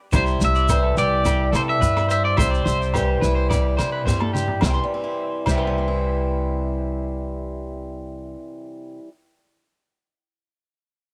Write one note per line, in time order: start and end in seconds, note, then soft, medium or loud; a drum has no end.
0.12 0.40 C2 medium
0.12 0.69 C3 medium
0.12 0.70 G3 medium
0.12 2.09 C4 medium
0.12 0.99 E4 medium
0.12 0.39 C5 medium
0.12 0.23 C5 medium
0.12 kick medium
0.12 cross-stick medium
0.12 low agogo medium
0.12 shekere medium
0.27 shekere soft
0.41 0.94 C2 medium
0.41 0.98 E5 medium
0.41 closed hi-hat soft
0.41 shekere medium
0.55 0.69 D5 medium
0.55 shekere soft
0.69 2.94 E3 medium
0.69 1.26 G3 medium
0.69 0.83 C5 medium
0.69 kick medium
0.69 cross-stick medium
0.69 low agogo medium
0.69 shekere medium
0.83 0.97 A4 medium
0.97 1.50 C2 medium
0.97 2.40 E4 medium
0.97 1.24 G4 medium
0.97 1.56 D5 medium
0.97 closed hi-hat soft
0.97 shekere medium
1.25 1.81 G3 medium
1.25 1.52 G4 medium
1.25 kick medium
1.25 cross-stick medium
1.25 low agogo soft
1.25 shekere medium
1.52 2.34 G2 medium
1.52 1.82 C3 medium
1.52 1.80 A4 medium
1.52 1.61 C5 medium
1.52 cross-stick medium
1.52 closed hi-hat soft
1.52 low agogo medium
1.52 shekere medium
1.69 2.08 E5 medium
1.81 2.35 G2 medium
1.81 2.39 G3 medium
1.81 2.08 B4 medium
1.81 kick medium
1.81 shekere medium
1.97 cross-stick medium
1.97 low agogo medium
2.09 2.39 C4 medium
2.09 2.36 C5 medium
2.09 2.24 E5 medium
2.09 closed hi-hat soft
2.09 shekere medium
2.25 2.37 D5 medium
2.37 2.65 C2 medium
2.37 2.94 C3 medium
2.37 2.94 G3 medium
2.37 4.33 C4 soft
2.37 3.23 E4 medium
2.37 4.03 C5 medium
2.37 2.51 E5 medium
2.37 kick medium
2.37 cross-stick medium
2.37 low agogo medium
2.37 shekere medium
2.51 2.65 D5 medium
2.51 shekere soft
2.65 3.19 C2 medium
2.65 2.92 C5 medium
2.65 closed hi-hat soft
2.65 shekere medium
2.82 shekere soft
2.94 4.60 E3 medium
2.94 3.51 G3 medium
2.94 3.21 G4 medium
2.94 kick medium
2.94 cross-stick medium
2.94 low agogo medium
2.94 shekere medium
3.21 3.75 C2 medium
3.21 3.79 E4 medium
3.21 3.35 B4 medium
3.21 closed hi-hat soft
3.21 shekere medium
3.35 3.49 C5 medium
3.50 4.06 G3 medium
3.50 3.77 D5 medium
3.50 kick medium
3.50 cross-stick medium
3.50 low agogo medium
3.50 shekere medium
3.77 4.60 G2 medium
3.77 4.07 C3 medium
3.77 5.02 E4 medium
3.77 3.91 C5 medium
3.77 cross-stick medium
3.77 closed hi-hat soft
3.77 low agogo medium
3.77 shekere medium
3.92 4.05 B4 medium
4.06 4.60 G2 medium
4.06 4.82 G3 medium
4.06 4.20 C5 medium
4.06 kick medium
4.06 snare soft
4.06 shekere medium
4.20 4.33 A4 medium
4.20 high tom soft
4.20 low agogo medium
4.33 4.59 C4 soft
4.33 4.61 G4 medium
4.33 mid tom medium
4.33 shekere medium
4.48 floor tom soft
4.61 4.78 C2 medium
4.61 5.48 C3 medium
4.61 4.79 C5 medium
4.61 kick medium
4.61 snare medium
4.61 low agogo medium
4.61 shekere medium
4.67 4.70 E5 medium
4.67 4.74 G5 medium
4.74 5.57 E3 medium
4.74 4.85 C6 medium
4.83 5.67 G3 medium
4.94 5.77 C4 medium
5.04 5.87 E4 medium
5.46 8.34 C2 medium
5.46 8.98 C3 medium
5.46 8.34 C5 medium
5.46 kick medium
5.46 crash medium
5.46 low agogo medium
5.46 shekere medium
5.51 8.36 E5 medium
5.55 9.08 E3 medium
5.55 8.38 G5 medium
5.55 8.40 C6 medium
5.67 9.08 G3 medium
5.78 9.08 C4 medium
5.88 9.08 E4 medium